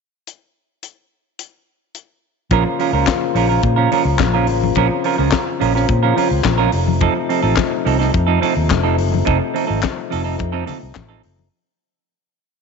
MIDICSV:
0, 0, Header, 1, 6, 480
1, 0, Start_track
1, 0, Key_signature, -5, "minor"
1, 0, Tempo, 562324
1, 236, Time_signature, 4, 2, 24, 8
1, 10768, End_track
2, 0, Start_track
2, 0, Title_t, "Clean electric guitar"
2, 0, Program_c, 0, 27
2, 2141, Note_on_c, 0, 53, 78
2, 2146, Note_on_c, 0, 61, 74
2, 2147, Note_on_c, 0, 65, 87
2, 2157, Note_on_c, 0, 70, 103
2, 2261, Note_off_c, 0, 70, 0
2, 2266, Note_off_c, 0, 65, 0
2, 2270, Note_off_c, 0, 61, 0
2, 2282, Note_off_c, 0, 53, 0
2, 2384, Note_on_c, 0, 53, 59
2, 2390, Note_on_c, 0, 61, 66
2, 2395, Note_on_c, 0, 65, 67
2, 2398, Note_on_c, 0, 70, 69
2, 2493, Note_off_c, 0, 53, 0
2, 2493, Note_off_c, 0, 70, 0
2, 2496, Note_off_c, 0, 61, 0
2, 2499, Note_off_c, 0, 65, 0
2, 2503, Note_on_c, 0, 70, 61
2, 2512, Note_on_c, 0, 65, 62
2, 2515, Note_on_c, 0, 61, 58
2, 2519, Note_on_c, 0, 53, 48
2, 2610, Note_off_c, 0, 53, 0
2, 2613, Note_off_c, 0, 70, 0
2, 2617, Note_off_c, 0, 61, 0
2, 2617, Note_off_c, 0, 65, 0
2, 2859, Note_on_c, 0, 53, 76
2, 2865, Note_on_c, 0, 61, 85
2, 2871, Note_on_c, 0, 65, 73
2, 2877, Note_on_c, 0, 70, 75
2, 2969, Note_off_c, 0, 70, 0
2, 2978, Note_off_c, 0, 65, 0
2, 2979, Note_on_c, 0, 70, 64
2, 2986, Note_off_c, 0, 61, 0
2, 2988, Note_on_c, 0, 65, 54
2, 2989, Note_off_c, 0, 53, 0
2, 2996, Note_on_c, 0, 61, 60
2, 2999, Note_on_c, 0, 53, 52
2, 3090, Note_off_c, 0, 70, 0
2, 3092, Note_off_c, 0, 53, 0
2, 3095, Note_off_c, 0, 61, 0
2, 3095, Note_off_c, 0, 65, 0
2, 3212, Note_on_c, 0, 70, 82
2, 3222, Note_on_c, 0, 65, 76
2, 3224, Note_on_c, 0, 61, 74
2, 3228, Note_on_c, 0, 53, 68
2, 3330, Note_off_c, 0, 53, 0
2, 3333, Note_off_c, 0, 61, 0
2, 3340, Note_off_c, 0, 65, 0
2, 3340, Note_on_c, 0, 53, 67
2, 3343, Note_on_c, 0, 61, 72
2, 3346, Note_off_c, 0, 70, 0
2, 3350, Note_on_c, 0, 65, 77
2, 3356, Note_on_c, 0, 70, 83
2, 3449, Note_off_c, 0, 70, 0
2, 3451, Note_off_c, 0, 53, 0
2, 3452, Note_off_c, 0, 61, 0
2, 3456, Note_off_c, 0, 65, 0
2, 3701, Note_on_c, 0, 70, 75
2, 3709, Note_on_c, 0, 65, 79
2, 3719, Note_on_c, 0, 61, 68
2, 3720, Note_on_c, 0, 53, 63
2, 3816, Note_off_c, 0, 53, 0
2, 3822, Note_off_c, 0, 61, 0
2, 3826, Note_off_c, 0, 65, 0
2, 3831, Note_off_c, 0, 70, 0
2, 4061, Note_on_c, 0, 53, 82
2, 4070, Note_on_c, 0, 61, 87
2, 4076, Note_on_c, 0, 65, 88
2, 4078, Note_on_c, 0, 70, 91
2, 4170, Note_off_c, 0, 70, 0
2, 4176, Note_off_c, 0, 65, 0
2, 4185, Note_off_c, 0, 61, 0
2, 4201, Note_off_c, 0, 53, 0
2, 4306, Note_on_c, 0, 53, 69
2, 4311, Note_on_c, 0, 61, 64
2, 4316, Note_on_c, 0, 65, 72
2, 4318, Note_on_c, 0, 70, 82
2, 4413, Note_off_c, 0, 70, 0
2, 4414, Note_off_c, 0, 53, 0
2, 4416, Note_off_c, 0, 61, 0
2, 4416, Note_off_c, 0, 65, 0
2, 4424, Note_on_c, 0, 70, 66
2, 4426, Note_on_c, 0, 65, 55
2, 4432, Note_on_c, 0, 61, 59
2, 4436, Note_on_c, 0, 53, 60
2, 4533, Note_off_c, 0, 70, 0
2, 4534, Note_off_c, 0, 53, 0
2, 4534, Note_off_c, 0, 65, 0
2, 4535, Note_off_c, 0, 61, 0
2, 4778, Note_on_c, 0, 53, 78
2, 4786, Note_on_c, 0, 65, 78
2, 4788, Note_on_c, 0, 61, 86
2, 4792, Note_on_c, 0, 70, 80
2, 4897, Note_off_c, 0, 65, 0
2, 4898, Note_off_c, 0, 70, 0
2, 4906, Note_off_c, 0, 61, 0
2, 4907, Note_on_c, 0, 65, 52
2, 4908, Note_off_c, 0, 53, 0
2, 4908, Note_on_c, 0, 70, 64
2, 4917, Note_on_c, 0, 61, 61
2, 4919, Note_on_c, 0, 53, 55
2, 5015, Note_off_c, 0, 65, 0
2, 5015, Note_off_c, 0, 70, 0
2, 5018, Note_off_c, 0, 53, 0
2, 5020, Note_off_c, 0, 61, 0
2, 5144, Note_on_c, 0, 70, 80
2, 5148, Note_on_c, 0, 65, 66
2, 5154, Note_on_c, 0, 61, 71
2, 5156, Note_on_c, 0, 53, 65
2, 5248, Note_off_c, 0, 53, 0
2, 5255, Note_off_c, 0, 61, 0
2, 5258, Note_on_c, 0, 53, 67
2, 5266, Note_off_c, 0, 65, 0
2, 5266, Note_on_c, 0, 61, 67
2, 5267, Note_off_c, 0, 70, 0
2, 5276, Note_on_c, 0, 65, 70
2, 5277, Note_on_c, 0, 70, 68
2, 5370, Note_off_c, 0, 70, 0
2, 5371, Note_off_c, 0, 53, 0
2, 5374, Note_off_c, 0, 61, 0
2, 5375, Note_off_c, 0, 65, 0
2, 5615, Note_on_c, 0, 70, 86
2, 5626, Note_on_c, 0, 65, 83
2, 5627, Note_on_c, 0, 61, 82
2, 5634, Note_on_c, 0, 53, 64
2, 5729, Note_off_c, 0, 53, 0
2, 5746, Note_off_c, 0, 61, 0
2, 5747, Note_off_c, 0, 65, 0
2, 5749, Note_off_c, 0, 70, 0
2, 5982, Note_on_c, 0, 53, 78
2, 5984, Note_on_c, 0, 60, 75
2, 5994, Note_on_c, 0, 63, 80
2, 5994, Note_on_c, 0, 69, 90
2, 6101, Note_off_c, 0, 69, 0
2, 6106, Note_off_c, 0, 60, 0
2, 6107, Note_off_c, 0, 63, 0
2, 6123, Note_off_c, 0, 53, 0
2, 6226, Note_on_c, 0, 60, 75
2, 6227, Note_on_c, 0, 53, 70
2, 6235, Note_on_c, 0, 63, 66
2, 6238, Note_on_c, 0, 69, 66
2, 6328, Note_off_c, 0, 69, 0
2, 6329, Note_off_c, 0, 63, 0
2, 6336, Note_off_c, 0, 53, 0
2, 6336, Note_off_c, 0, 60, 0
2, 6338, Note_on_c, 0, 69, 68
2, 6340, Note_on_c, 0, 63, 55
2, 6350, Note_on_c, 0, 60, 61
2, 6353, Note_on_c, 0, 53, 53
2, 6452, Note_off_c, 0, 63, 0
2, 6452, Note_off_c, 0, 69, 0
2, 6453, Note_off_c, 0, 53, 0
2, 6457, Note_off_c, 0, 60, 0
2, 6701, Note_on_c, 0, 53, 74
2, 6708, Note_on_c, 0, 60, 78
2, 6711, Note_on_c, 0, 63, 78
2, 6719, Note_on_c, 0, 69, 85
2, 6811, Note_off_c, 0, 69, 0
2, 6815, Note_off_c, 0, 63, 0
2, 6821, Note_off_c, 0, 60, 0
2, 6821, Note_on_c, 0, 69, 64
2, 6825, Note_on_c, 0, 63, 70
2, 6826, Note_off_c, 0, 53, 0
2, 6832, Note_on_c, 0, 60, 62
2, 6836, Note_on_c, 0, 53, 58
2, 6923, Note_off_c, 0, 53, 0
2, 6930, Note_off_c, 0, 60, 0
2, 6934, Note_off_c, 0, 69, 0
2, 6936, Note_off_c, 0, 63, 0
2, 7056, Note_on_c, 0, 69, 78
2, 7064, Note_on_c, 0, 63, 78
2, 7068, Note_on_c, 0, 60, 63
2, 7072, Note_on_c, 0, 53, 61
2, 7169, Note_off_c, 0, 53, 0
2, 7177, Note_off_c, 0, 60, 0
2, 7179, Note_off_c, 0, 63, 0
2, 7179, Note_on_c, 0, 53, 69
2, 7181, Note_off_c, 0, 69, 0
2, 7187, Note_on_c, 0, 60, 78
2, 7190, Note_on_c, 0, 63, 77
2, 7192, Note_on_c, 0, 69, 92
2, 7293, Note_off_c, 0, 53, 0
2, 7293, Note_off_c, 0, 69, 0
2, 7295, Note_off_c, 0, 63, 0
2, 7297, Note_off_c, 0, 60, 0
2, 7540, Note_on_c, 0, 69, 83
2, 7549, Note_on_c, 0, 60, 72
2, 7550, Note_on_c, 0, 63, 83
2, 7556, Note_on_c, 0, 53, 71
2, 7651, Note_off_c, 0, 53, 0
2, 7657, Note_off_c, 0, 60, 0
2, 7662, Note_off_c, 0, 69, 0
2, 7663, Note_off_c, 0, 63, 0
2, 7897, Note_on_c, 0, 53, 73
2, 7899, Note_on_c, 0, 60, 82
2, 7906, Note_on_c, 0, 63, 92
2, 7912, Note_on_c, 0, 69, 77
2, 8011, Note_off_c, 0, 69, 0
2, 8017, Note_off_c, 0, 63, 0
2, 8029, Note_off_c, 0, 60, 0
2, 8043, Note_off_c, 0, 53, 0
2, 8141, Note_on_c, 0, 53, 66
2, 8146, Note_on_c, 0, 60, 72
2, 8157, Note_on_c, 0, 63, 68
2, 8158, Note_on_c, 0, 69, 69
2, 8243, Note_off_c, 0, 69, 0
2, 8248, Note_off_c, 0, 63, 0
2, 8253, Note_off_c, 0, 60, 0
2, 8254, Note_on_c, 0, 69, 65
2, 8256, Note_off_c, 0, 53, 0
2, 8258, Note_on_c, 0, 63, 60
2, 8263, Note_on_c, 0, 60, 53
2, 8264, Note_on_c, 0, 53, 51
2, 8372, Note_off_c, 0, 69, 0
2, 8374, Note_off_c, 0, 63, 0
2, 8376, Note_off_c, 0, 60, 0
2, 8377, Note_off_c, 0, 53, 0
2, 8623, Note_on_c, 0, 53, 79
2, 8629, Note_on_c, 0, 60, 70
2, 8632, Note_on_c, 0, 63, 79
2, 8643, Note_on_c, 0, 69, 89
2, 8733, Note_off_c, 0, 69, 0
2, 8740, Note_off_c, 0, 63, 0
2, 8741, Note_off_c, 0, 60, 0
2, 8744, Note_off_c, 0, 53, 0
2, 8744, Note_on_c, 0, 69, 57
2, 8751, Note_on_c, 0, 63, 53
2, 8752, Note_on_c, 0, 60, 59
2, 8754, Note_on_c, 0, 53, 49
2, 8850, Note_off_c, 0, 53, 0
2, 8853, Note_off_c, 0, 60, 0
2, 8857, Note_off_c, 0, 63, 0
2, 8857, Note_off_c, 0, 69, 0
2, 8982, Note_on_c, 0, 69, 82
2, 8987, Note_on_c, 0, 63, 81
2, 8989, Note_on_c, 0, 60, 73
2, 8996, Note_on_c, 0, 53, 73
2, 9089, Note_off_c, 0, 53, 0
2, 9095, Note_off_c, 0, 60, 0
2, 9095, Note_off_c, 0, 63, 0
2, 9102, Note_off_c, 0, 69, 0
2, 9105, Note_on_c, 0, 60, 75
2, 9105, Note_on_c, 0, 63, 66
2, 9113, Note_on_c, 0, 69, 75
2, 9210, Note_off_c, 0, 69, 0
2, 9218, Note_off_c, 0, 60, 0
2, 9219, Note_off_c, 0, 63, 0
2, 9463, Note_on_c, 0, 69, 80
2, 9470, Note_on_c, 0, 63, 71
2, 9474, Note_on_c, 0, 60, 76
2, 9482, Note_on_c, 0, 53, 61
2, 9578, Note_off_c, 0, 53, 0
2, 9584, Note_off_c, 0, 60, 0
2, 9587, Note_off_c, 0, 63, 0
2, 9591, Note_off_c, 0, 69, 0
2, 10768, End_track
3, 0, Start_track
3, 0, Title_t, "Tonewheel organ"
3, 0, Program_c, 1, 16
3, 2142, Note_on_c, 1, 49, 65
3, 2144, Note_on_c, 1, 53, 57
3, 2147, Note_on_c, 1, 65, 73
3, 2149, Note_on_c, 1, 58, 54
3, 4048, Note_off_c, 1, 58, 0
3, 4062, Note_on_c, 1, 60, 58
3, 5711, Note_off_c, 1, 49, 0
3, 5714, Note_off_c, 1, 65, 0
3, 5730, Note_off_c, 1, 60, 0
3, 5753, Note_on_c, 1, 48, 68
3, 5753, Note_on_c, 1, 63, 68
3, 5756, Note_on_c, 1, 57, 61
3, 9801, Note_off_c, 1, 53, 0
3, 9806, Note_off_c, 1, 48, 0
3, 9806, Note_off_c, 1, 63, 0
3, 9808, Note_off_c, 1, 57, 0
3, 10768, End_track
4, 0, Start_track
4, 0, Title_t, "Fingered electric bass"
4, 0, Program_c, 2, 33
4, 2144, Note_on_c, 2, 34, 111
4, 2242, Note_off_c, 2, 34, 0
4, 2500, Note_on_c, 2, 37, 83
4, 2600, Note_off_c, 2, 37, 0
4, 2860, Note_on_c, 2, 34, 73
4, 3056, Note_off_c, 2, 34, 0
4, 3102, Note_on_c, 2, 46, 96
4, 3297, Note_off_c, 2, 46, 0
4, 3458, Note_on_c, 2, 37, 89
4, 3581, Note_off_c, 2, 37, 0
4, 3581, Note_on_c, 2, 34, 92
4, 3825, Note_off_c, 2, 34, 0
4, 3825, Note_on_c, 2, 33, 98
4, 4019, Note_off_c, 2, 33, 0
4, 4059, Note_on_c, 2, 34, 112
4, 4159, Note_off_c, 2, 34, 0
4, 4429, Note_on_c, 2, 37, 82
4, 4525, Note_off_c, 2, 37, 0
4, 4791, Note_on_c, 2, 34, 81
4, 4983, Note_off_c, 2, 34, 0
4, 5024, Note_on_c, 2, 46, 102
4, 5219, Note_off_c, 2, 46, 0
4, 5387, Note_on_c, 2, 37, 85
4, 5485, Note_off_c, 2, 37, 0
4, 5503, Note_on_c, 2, 34, 91
4, 5699, Note_off_c, 2, 34, 0
4, 5745, Note_on_c, 2, 29, 95
4, 6037, Note_off_c, 2, 29, 0
4, 6346, Note_on_c, 2, 33, 77
4, 6445, Note_off_c, 2, 33, 0
4, 6713, Note_on_c, 2, 36, 84
4, 6906, Note_off_c, 2, 36, 0
4, 6952, Note_on_c, 2, 41, 84
4, 7146, Note_off_c, 2, 41, 0
4, 7312, Note_on_c, 2, 39, 82
4, 7409, Note_off_c, 2, 39, 0
4, 7434, Note_on_c, 2, 29, 100
4, 7679, Note_off_c, 2, 29, 0
4, 7679, Note_on_c, 2, 30, 85
4, 7870, Note_off_c, 2, 30, 0
4, 7911, Note_on_c, 2, 29, 100
4, 8009, Note_off_c, 2, 29, 0
4, 8281, Note_on_c, 2, 32, 75
4, 8376, Note_off_c, 2, 32, 0
4, 8649, Note_on_c, 2, 29, 74
4, 8838, Note_off_c, 2, 29, 0
4, 8877, Note_on_c, 2, 41, 104
4, 9070, Note_off_c, 2, 41, 0
4, 9245, Note_on_c, 2, 36, 78
4, 9338, Note_off_c, 2, 36, 0
4, 9360, Note_on_c, 2, 33, 88
4, 9552, Note_off_c, 2, 33, 0
4, 9604, Note_on_c, 2, 30, 80
4, 9795, Note_off_c, 2, 30, 0
4, 10768, End_track
5, 0, Start_track
5, 0, Title_t, "Muted clean electric guitar strokes"
5, 2271, Note_on_c, 9, 29, 38
5, 2356, Note_off_c, 9, 29, 0
5, 2620, Note_on_c, 9, 29, 35
5, 2705, Note_off_c, 9, 29, 0
5, 2742, Note_on_c, 9, 29, 46
5, 2828, Note_off_c, 9, 29, 0
5, 3459, Note_on_c, 9, 29, 52
5, 3545, Note_off_c, 9, 29, 0
5, 3582, Note_on_c, 9, 29, 36
5, 3668, Note_off_c, 9, 29, 0
5, 3836, Note_on_c, 9, 29, 51
5, 3921, Note_off_c, 9, 29, 0
5, 3936, Note_on_c, 9, 29, 40
5, 4021, Note_off_c, 9, 29, 0
5, 4180, Note_on_c, 9, 29, 38
5, 4266, Note_off_c, 9, 29, 0
5, 4544, Note_on_c, 9, 29, 33
5, 4630, Note_off_c, 9, 29, 0
5, 4666, Note_on_c, 9, 29, 44
5, 4751, Note_off_c, 9, 29, 0
5, 5028, Note_on_c, 9, 29, 40
5, 5114, Note_off_c, 9, 29, 0
5, 5380, Note_on_c, 9, 29, 44
5, 5465, Note_off_c, 9, 29, 0
5, 5501, Note_on_c, 9, 29, 36
5, 5587, Note_off_c, 9, 29, 0
5, 5739, Note_on_c, 9, 29, 40
5, 5825, Note_off_c, 9, 29, 0
5, 5860, Note_on_c, 9, 29, 35
5, 5945, Note_off_c, 9, 29, 0
5, 6111, Note_on_c, 9, 29, 42
5, 6196, Note_off_c, 9, 29, 0
5, 6464, Note_on_c, 9, 29, 45
5, 6549, Note_off_c, 9, 29, 0
5, 6585, Note_on_c, 9, 29, 45
5, 6671, Note_off_c, 9, 29, 0
5, 6933, Note_on_c, 9, 29, 45
5, 7018, Note_off_c, 9, 29, 0
5, 7303, Note_on_c, 9, 29, 43
5, 7389, Note_off_c, 9, 29, 0
5, 7427, Note_on_c, 9, 29, 39
5, 7512, Note_off_c, 9, 29, 0
5, 7784, Note_on_c, 9, 29, 52
5, 7869, Note_off_c, 9, 29, 0
5, 8021, Note_on_c, 9, 29, 44
5, 8106, Note_off_c, 9, 29, 0
5, 8388, Note_on_c, 9, 29, 43
5, 8473, Note_off_c, 9, 29, 0
5, 8504, Note_on_c, 9, 29, 47
5, 8590, Note_off_c, 9, 29, 0
5, 8860, Note_on_c, 9, 29, 39
5, 8946, Note_off_c, 9, 29, 0
5, 9220, Note_on_c, 9, 29, 42
5, 9306, Note_off_c, 9, 29, 0
5, 9351, Note_on_c, 9, 29, 36
5, 9437, Note_off_c, 9, 29, 0
5, 9699, Note_on_c, 9, 29, 38
5, 9785, Note_off_c, 9, 29, 0
5, 10768, End_track
6, 0, Start_track
6, 0, Title_t, "Drums"
6, 231, Note_on_c, 9, 42, 47
6, 317, Note_off_c, 9, 42, 0
6, 705, Note_on_c, 9, 42, 54
6, 791, Note_off_c, 9, 42, 0
6, 1185, Note_on_c, 9, 42, 61
6, 1270, Note_off_c, 9, 42, 0
6, 1661, Note_on_c, 9, 42, 52
6, 1746, Note_off_c, 9, 42, 0
6, 2137, Note_on_c, 9, 42, 59
6, 2143, Note_on_c, 9, 36, 104
6, 2145, Note_on_c, 9, 62, 55
6, 2222, Note_off_c, 9, 42, 0
6, 2228, Note_off_c, 9, 36, 0
6, 2230, Note_off_c, 9, 62, 0
6, 2384, Note_on_c, 9, 46, 52
6, 2470, Note_off_c, 9, 46, 0
6, 2621, Note_on_c, 9, 39, 85
6, 2622, Note_on_c, 9, 42, 66
6, 2624, Note_on_c, 9, 36, 94
6, 2626, Note_on_c, 9, 38, 108
6, 2629, Note_on_c, 9, 63, 77
6, 2707, Note_off_c, 9, 39, 0
6, 2708, Note_off_c, 9, 42, 0
6, 2710, Note_off_c, 9, 36, 0
6, 2712, Note_off_c, 9, 38, 0
6, 2714, Note_off_c, 9, 63, 0
6, 2862, Note_on_c, 9, 46, 59
6, 2948, Note_off_c, 9, 46, 0
6, 3095, Note_on_c, 9, 42, 58
6, 3102, Note_on_c, 9, 36, 127
6, 3109, Note_on_c, 9, 62, 30
6, 3180, Note_off_c, 9, 42, 0
6, 3187, Note_off_c, 9, 36, 0
6, 3195, Note_off_c, 9, 62, 0
6, 3342, Note_on_c, 9, 46, 55
6, 3349, Note_on_c, 9, 62, 48
6, 3427, Note_off_c, 9, 46, 0
6, 3435, Note_off_c, 9, 62, 0
6, 3578, Note_on_c, 9, 39, 83
6, 3578, Note_on_c, 9, 42, 58
6, 3581, Note_on_c, 9, 36, 95
6, 3581, Note_on_c, 9, 63, 87
6, 3583, Note_on_c, 9, 38, 93
6, 3663, Note_off_c, 9, 39, 0
6, 3663, Note_off_c, 9, 42, 0
6, 3666, Note_off_c, 9, 36, 0
6, 3667, Note_off_c, 9, 63, 0
6, 3668, Note_off_c, 9, 38, 0
6, 3813, Note_on_c, 9, 46, 63
6, 3898, Note_off_c, 9, 46, 0
6, 3956, Note_on_c, 9, 63, 75
6, 4041, Note_off_c, 9, 63, 0
6, 4053, Note_on_c, 9, 42, 59
6, 4061, Note_on_c, 9, 36, 95
6, 4069, Note_on_c, 9, 62, 62
6, 4138, Note_off_c, 9, 42, 0
6, 4146, Note_off_c, 9, 36, 0
6, 4154, Note_off_c, 9, 62, 0
6, 4301, Note_on_c, 9, 46, 49
6, 4386, Note_off_c, 9, 46, 0
6, 4539, Note_on_c, 9, 39, 84
6, 4540, Note_on_c, 9, 42, 65
6, 4544, Note_on_c, 9, 36, 93
6, 4544, Note_on_c, 9, 38, 117
6, 4552, Note_on_c, 9, 63, 77
6, 4624, Note_off_c, 9, 39, 0
6, 4625, Note_off_c, 9, 42, 0
6, 4629, Note_off_c, 9, 36, 0
6, 4629, Note_off_c, 9, 38, 0
6, 4638, Note_off_c, 9, 63, 0
6, 4790, Note_on_c, 9, 46, 60
6, 4875, Note_off_c, 9, 46, 0
6, 4916, Note_on_c, 9, 38, 34
6, 5001, Note_off_c, 9, 38, 0
6, 5026, Note_on_c, 9, 42, 65
6, 5027, Note_on_c, 9, 36, 121
6, 5031, Note_on_c, 9, 62, 29
6, 5111, Note_off_c, 9, 42, 0
6, 5112, Note_off_c, 9, 36, 0
6, 5116, Note_off_c, 9, 62, 0
6, 5272, Note_on_c, 9, 46, 63
6, 5272, Note_on_c, 9, 62, 45
6, 5357, Note_off_c, 9, 46, 0
6, 5357, Note_off_c, 9, 62, 0
6, 5502, Note_on_c, 9, 39, 75
6, 5502, Note_on_c, 9, 42, 52
6, 5504, Note_on_c, 9, 36, 98
6, 5507, Note_on_c, 9, 38, 94
6, 5512, Note_on_c, 9, 63, 83
6, 5587, Note_off_c, 9, 42, 0
6, 5588, Note_off_c, 9, 39, 0
6, 5589, Note_off_c, 9, 36, 0
6, 5593, Note_off_c, 9, 38, 0
6, 5597, Note_off_c, 9, 63, 0
6, 5736, Note_on_c, 9, 46, 67
6, 5822, Note_off_c, 9, 46, 0
6, 5871, Note_on_c, 9, 63, 72
6, 5957, Note_off_c, 9, 63, 0
6, 5978, Note_on_c, 9, 42, 52
6, 5985, Note_on_c, 9, 36, 99
6, 5988, Note_on_c, 9, 62, 59
6, 6063, Note_off_c, 9, 42, 0
6, 6071, Note_off_c, 9, 36, 0
6, 6073, Note_off_c, 9, 62, 0
6, 6230, Note_on_c, 9, 46, 50
6, 6316, Note_off_c, 9, 46, 0
6, 6458, Note_on_c, 9, 39, 87
6, 6459, Note_on_c, 9, 42, 60
6, 6463, Note_on_c, 9, 38, 105
6, 6466, Note_on_c, 9, 36, 114
6, 6479, Note_on_c, 9, 63, 86
6, 6544, Note_off_c, 9, 39, 0
6, 6545, Note_off_c, 9, 42, 0
6, 6549, Note_off_c, 9, 38, 0
6, 6551, Note_off_c, 9, 36, 0
6, 6564, Note_off_c, 9, 63, 0
6, 6713, Note_on_c, 9, 46, 63
6, 6799, Note_off_c, 9, 46, 0
6, 6835, Note_on_c, 9, 38, 32
6, 6920, Note_off_c, 9, 38, 0
6, 6946, Note_on_c, 9, 42, 57
6, 6951, Note_on_c, 9, 36, 125
6, 6956, Note_on_c, 9, 62, 33
6, 7032, Note_off_c, 9, 42, 0
6, 7036, Note_off_c, 9, 36, 0
6, 7042, Note_off_c, 9, 62, 0
6, 7193, Note_on_c, 9, 46, 54
6, 7198, Note_on_c, 9, 62, 47
6, 7278, Note_off_c, 9, 46, 0
6, 7283, Note_off_c, 9, 62, 0
6, 7430, Note_on_c, 9, 39, 75
6, 7430, Note_on_c, 9, 42, 50
6, 7431, Note_on_c, 9, 36, 88
6, 7435, Note_on_c, 9, 38, 93
6, 7435, Note_on_c, 9, 63, 88
6, 7515, Note_off_c, 9, 39, 0
6, 7515, Note_off_c, 9, 42, 0
6, 7517, Note_off_c, 9, 36, 0
6, 7520, Note_off_c, 9, 38, 0
6, 7520, Note_off_c, 9, 63, 0
6, 7666, Note_on_c, 9, 46, 69
6, 7752, Note_off_c, 9, 46, 0
6, 7800, Note_on_c, 9, 63, 76
6, 7885, Note_off_c, 9, 63, 0
6, 7909, Note_on_c, 9, 42, 50
6, 7913, Note_on_c, 9, 36, 109
6, 7918, Note_on_c, 9, 62, 62
6, 7994, Note_off_c, 9, 42, 0
6, 7999, Note_off_c, 9, 36, 0
6, 8004, Note_off_c, 9, 62, 0
6, 8155, Note_on_c, 9, 46, 55
6, 8241, Note_off_c, 9, 46, 0
6, 8390, Note_on_c, 9, 39, 84
6, 8395, Note_on_c, 9, 38, 102
6, 8397, Note_on_c, 9, 36, 103
6, 8403, Note_on_c, 9, 63, 88
6, 8475, Note_off_c, 9, 39, 0
6, 8480, Note_off_c, 9, 38, 0
6, 8482, Note_off_c, 9, 36, 0
6, 8488, Note_off_c, 9, 63, 0
6, 8636, Note_on_c, 9, 46, 62
6, 8721, Note_off_c, 9, 46, 0
6, 8868, Note_on_c, 9, 42, 57
6, 8878, Note_on_c, 9, 36, 119
6, 8890, Note_on_c, 9, 62, 31
6, 8954, Note_off_c, 9, 42, 0
6, 8963, Note_off_c, 9, 36, 0
6, 8975, Note_off_c, 9, 62, 0
6, 9108, Note_on_c, 9, 46, 65
6, 9126, Note_on_c, 9, 62, 50
6, 9126, Note_on_c, 9, 64, 70
6, 9194, Note_off_c, 9, 46, 0
6, 9212, Note_off_c, 9, 62, 0
6, 9212, Note_off_c, 9, 64, 0
6, 9348, Note_on_c, 9, 39, 82
6, 9348, Note_on_c, 9, 42, 55
6, 9353, Note_on_c, 9, 38, 92
6, 9356, Note_on_c, 9, 63, 86
6, 9357, Note_on_c, 9, 36, 103
6, 9433, Note_off_c, 9, 39, 0
6, 9433, Note_off_c, 9, 42, 0
6, 9438, Note_off_c, 9, 38, 0
6, 9442, Note_off_c, 9, 63, 0
6, 9443, Note_off_c, 9, 36, 0
6, 9587, Note_on_c, 9, 46, 70
6, 9672, Note_off_c, 9, 46, 0
6, 9721, Note_on_c, 9, 63, 71
6, 9807, Note_off_c, 9, 63, 0
6, 10768, End_track
0, 0, End_of_file